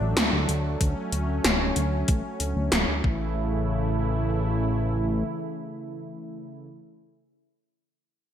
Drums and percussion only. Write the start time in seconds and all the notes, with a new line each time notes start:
0.17 snare, closed hi-hat
0.49 closed hi-hat
0.81 kick, closed hi-hat
1.12 closed hi-hat
1.44 snare, closed hi-hat
1.76 closed hi-hat
2.08 kick, closed hi-hat
2.40 closed hi-hat
2.72 snare, closed hi-hat
3.04 kick